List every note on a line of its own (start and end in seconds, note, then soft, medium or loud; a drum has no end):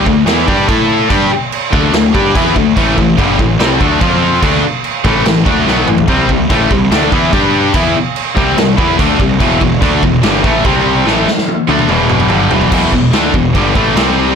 0.06 0.26 D2 medium
0.06 0.23 D3 medium
0.06 0.23 A3 medium
0.06 kick loud
0.26 0.46 E2 loud
0.26 0.47 E3 medium
0.26 0.47 B3 loud
0.26 0.47 E4 loud
0.26 snare loud
0.26 crash medium
0.48 0.67 G2 loud
0.48 0.67 G3 medium
0.48 0.68 D4 medium
0.48 0.68 G4 loud
0.48 kick loud
0.68 1.07 A2 loud
0.68 1.09 A3 medium
0.68 1.09 E4 medium
0.68 1.10 A4 loud
0.68 kick loud
0.68 crash medium
1.10 1.30 G2 medium
1.10 1.30 G3 loud
1.10 1.30 D4 loud
1.10 1.30 G4 loud
1.10 kick loud
1.10 crash medium
1.52 crash medium
1.73 1.92 D2 medium
1.73 1.93 D3 loud
1.73 1.93 A3 loud
1.73 1.93 D4 loud
1.73 kick loud
1.93 2.12 D2 medium
1.93 2.10 D3 medium
1.93 2.10 A3 medium
1.93 snare loud
1.93 crash medium
2.14 2.34 G2 loud
2.14 2.34 G3 medium
2.14 2.35 D4 medium
2.14 2.35 G4 loud
2.14 kick loud
2.35 2.54 E2 loud
2.35 2.55 E3 loud
2.35 2.55 B3 medium
2.35 2.56 E4 medium
2.35 kick loud
2.35 crash medium
2.56 2.75 D2 medium
2.56 2.73 D3 medium
2.56 2.73 A3 medium
2.56 kick medium
2.77 2.96 A1 medium
2.77 2.97 A2 medium
2.77 2.97 E3 loud
2.77 2.98 A3 loud
2.77 kick loud
2.77 crash medium
2.98 3.17 A1 medium
2.98 3.14 A2 medium
2.98 3.14 E3 medium
2.98 kick medium
3.18 3.37 G1 loud
3.18 3.38 G2 medium
3.18 3.38 D3 medium
3.18 3.39 G3 loud
3.18 kick loud
3.18 crash medium
3.39 3.58 A1 medium
3.39 3.56 A2 medium
3.39 3.56 E3 medium
3.39 kick loud
3.59 3.79 C2 loud
3.59 3.79 C3 loud
3.59 3.80 G3 loud
3.59 3.80 C4 loud
3.59 snare loud
3.59 crash medium
3.79 4.00 D2 loud
3.79 4.00 D3 loud
3.79 4.00 A3 medium
3.79 4.01 D4 loud
3.79 kick loud
4.01 4.40 F2 loud
4.01 4.42 F3 medium
4.01 4.42 C4 medium
4.01 4.43 F4 loud
4.01 kick loud
4.01 crash medium
4.42 4.62 D2 loud
4.42 4.62 D3 medium
4.42 4.63 A3 loud
4.42 4.63 D4 loud
4.42 kick loud
4.42 crash medium
4.84 crash medium
5.05 5.24 A1 loud
5.05 5.24 A2 medium
5.05 5.25 E3 loud
5.05 5.25 A3 loud
5.05 kick loud
5.26 5.45 A1 medium
5.26 5.42 A2 medium
5.26 5.42 E3 medium
5.26 snare loud
5.26 crash medium
5.45 5.65 D2 loud
5.45 5.66 D3 medium
5.45 5.66 A3 loud
5.45 5.67 D4 medium
5.45 kick loud
5.65 5.86 B1 loud
5.65 5.87 B2 medium
5.65 5.88 F#3 medium
5.65 5.88 B3 loud
5.65 snare medium
5.87 6.07 A1 medium
5.87 6.04 A2 medium
5.87 6.05 E3 medium
5.87 mid tom loud
5.98 floor tom loud
6.08 6.28 C2 medium
6.08 6.27 C3 medium
6.08 6.28 G3 loud
6.08 6.29 C4 loud
6.08 kick loud
6.08 crash medium
6.29 6.49 C2 medium
6.29 6.46 C3 medium
6.29 6.46 G3 medium
6.29 kick medium
6.49 6.69 A1 medium
6.49 6.70 A2 medium
6.49 6.70 E3 medium
6.49 6.71 A3 medium
6.49 kick loud
6.49 crash medium
6.71 6.90 C2 medium
6.71 6.87 C3 medium
6.71 6.88 G3 medium
6.71 kick loud
6.91 7.11 D2 loud
6.91 7.12 D3 medium
6.91 7.12 A3 loud
6.91 7.12 D4 loud
6.91 snare loud
6.91 crash medium
7.12 7.32 E2 loud
7.12 7.33 E3 medium
7.12 7.32 B3 medium
7.12 7.33 E4 loud
7.12 kick loud
7.32 7.72 G2 loud
7.32 7.74 G3 medium
7.32 7.74 D4 medium
7.32 7.74 G4 loud
7.32 kick loud
7.32 crash medium
7.74 7.94 E2 loud
7.74 7.94 E3 loud
7.74 7.95 B3 loud
7.74 7.95 E4 loud
7.74 kick loud
7.74 crash medium
8.16 crash medium
8.36 8.56 C2 medium
8.36 8.56 C3 medium
8.36 8.56 G3 loud
8.36 8.57 C4 loud
8.36 kick loud
8.57 8.77 C2 medium
8.57 8.74 C3 medium
8.57 8.74 G3 medium
8.57 snare loud
8.57 crash medium
8.77 8.97 E2 loud
8.77 8.98 E3 loud
8.77 8.98 B3 loud
8.77 8.99 E4 loud
8.77 kick loud
8.98 9.18 D2 loud
8.98 9.19 D3 medium
8.98 9.19 A3 medium
8.98 9.19 D4 loud
8.98 kick loud
8.98 crash medium
9.20 9.39 C2 medium
9.20 9.36 C3 medium
9.20 9.36 G3 medium
9.20 kick loud
9.40 9.60 E1 loud
9.40 9.60 E2 loud
9.40 9.60 B2 loud
9.40 9.61 E3 loud
9.40 kick loud
9.40 crash medium
9.61 9.80 E1 medium
9.61 9.78 E2 medium
9.61 9.78 B2 medium
9.61 kick medium
9.81 10.01 D2 loud
9.81 10.02 D3 medium
9.81 10.02 A3 medium
9.81 10.02 D4 medium
9.81 kick loud
9.81 crash medium
10.03 10.22 E1 medium
10.03 10.19 E2 medium
10.03 10.20 B2 medium
10.03 kick loud
10.23 10.43 G1 loud
10.23 10.44 G2 medium
10.23 10.43 D3 loud
10.23 10.44 G3 loud
10.23 snare loud
10.23 crash medium
10.44 10.63 A1 loud
10.44 10.64 A2 loud
10.44 10.64 E3 loud
10.44 10.65 A3 loud
10.44 kick loud
10.65 11.03 C2 loud
10.65 11.06 C3 medium
10.65 11.06 G3 loud
10.65 11.06 C4 loud
10.65 kick loud
10.65 crash medium
11.06 11.25 A1 loud
11.06 11.26 A2 medium
11.06 11.27 E3 loud
11.06 11.27 A3 loud
11.06 snare medium
11.28 snare medium
11.38 snare medium
11.48 high tom medium
11.68 11.88 D2 medium
11.68 11.89 D3 medium
11.68 11.89 A3 loud
11.68 11.89 D4 loud
11.68 high tom medium
11.79 mid tom medium
11.89 12.27 E1 loud
11.89 12.30 E2 medium
11.89 12.31 B2 loud
11.89 12.31 E3 medium
11.89 mid tom medium
12.09 mid tom loud
12.20 mid tom loud
12.30 12.49 G1 loud
12.30 12.51 G2 medium
12.30 12.51 D3 loud
12.30 12.52 G3 medium
12.30 mid tom loud
12.50 12.70 E1 medium
12.50 12.72 E2 medium
12.50 12.72 B2 loud
12.50 floor tom loud
12.54 12.72 E3 loud
12.61 floor tom loud
12.72 12.91 E1 medium
12.72 12.92 E2 loud
12.72 12.93 B2 loud
12.72 12.93 E3 loud
12.72 kick loud
12.72 crash loud
12.72 crash medium
12.92 13.11 E1 medium
12.92 13.09 E2 medium
12.92 13.10 B2 medium
12.92 kick medium
13.12 13.31 D2 medium
13.12 13.33 D3 medium
13.12 13.34 A3 medium
13.12 13.34 D4 loud
13.12 snare loud
13.12 crash medium
13.34 13.53 E1 medium
13.34 13.51 E2 medium
13.34 13.51 B2 medium
13.34 kick medium
13.55 13.74 G1 medium
13.55 13.75 G2 medium
13.55 13.75 D3 loud
13.55 13.76 G3 medium
13.55 kick loud
13.55 crash medium
13.75 13.95 A1 loud
13.75 13.95 A2 medium
13.75 13.96 E3 medium
13.75 13.96 A3 loud
13.75 kick loud
13.95 14.34 C2 loud
13.95 14.35 C3 medium
13.95 14.35 G3 loud
13.95 14.35 C4 loud
13.95 snare loud
13.95 crash medium